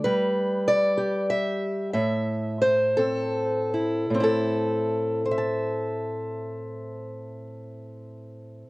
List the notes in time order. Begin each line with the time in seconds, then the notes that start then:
0.04 G3 B4
0.68 D5
0.98 G4
1.30 E5
1.93 A2 E5
2.61 C5
2.97 C4 A4
3.73 E4
4.10 A2
4.14 C4
4.20 E4 A4
5.25 C5
5.31 E5
5.38 A5